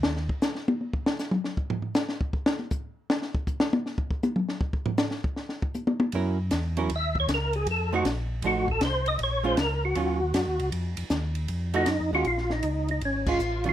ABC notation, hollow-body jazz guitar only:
X:1
M:4/4
L:1/8
Q:"Swing" 1/4=157
K:Bbm
V:1 name="Hollow-body jazz guitar"
z8 | z8 | z8 | z8 |
[G,D_FB] z2 [G,DFB] z4 | z [F,=A,EG] z2 [F,A,EG] z3 | z [A,DF] z2 [E,G,DF] z3 | z4 z [F,=A,EG] z [_A,DF] |
z4 z [A,DF] z [E,G,DF] |]